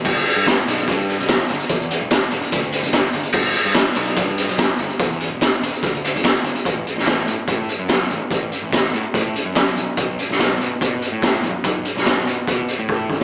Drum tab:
CC |x---------------|----------------|x---------------|----------------|
HH |-xx-x-xxxxxxx-xx|xxx-xxxxxxxxxxxx|-xx-x-xxxxxxx-xx|xxx-xxxxxxxxxxxx|
SD |----o-------o---|----o-------o---|----o-------o---|----o-------o---|
BD |o---o---o---o---|o---o---o---o---|o---o---o---o---|o---o---o---o---|

CC |----------------|----------------|----------------|----------------|
HH |x-x-x-x-x-x-x-x-|x-x-x-x-x-x-x-x-|x-x-x-x-x-x-x-x-|x-x-x-x-x-x-----|
SD |---oo-------o---|----o-------o---|---oo-------o---|---oo-----------|
BD |o---o---o---o---|o---o---o---o---|o---o---o---o---|o---o---o---o-o-|